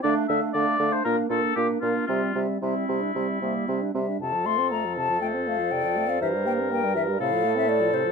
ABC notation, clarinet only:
X:1
M:4/4
L:1/16
Q:1/4=119
K:F
V:1 name="Clarinet"
D2 D2 D2 D2 D2 D2 D2 D2 | C2 C2 C3 D C2 B,2 C D C D | z8 c4 d4 | c4 B4 A8 |]